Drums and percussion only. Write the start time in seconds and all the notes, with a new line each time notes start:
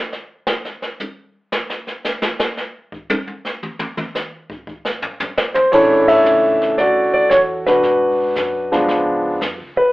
0.13 snare
0.47 snare
0.65 snare
0.82 snare
1.00 hi-hat pedal, high tom
1.52 snare
1.70 snare
1.87 snare
2.05 snare, hi-hat pedal
2.22 snare
2.39 snare
2.57 snare
2.92 kick
3.10 hi-hat pedal, high tom
3.27 high tom
3.45 snare
3.63 mid tom
3.79 mid tom
3.97 mid tom
4.15 snare, hi-hat pedal
4.50 kick
4.67 kick
4.85 snare
5.02 floor tom
5.20 floor tom, hi-hat pedal
5.37 snare
5.55 floor tom
5.72 brush sweep, kick, snare, crash
6.08 kick, crash
6.26 hi-hat pedal
6.61 snare
6.78 brush sweep, kick, snare
7.31 kick, snare, hi-hat pedal
7.66 snare
7.83 brush sweep, kick, snare
8.36 kick, snare, hi-hat pedal
8.72 snare
8.89 brush sweep, kick, snare
9.41 kick, snare, hi-hat pedal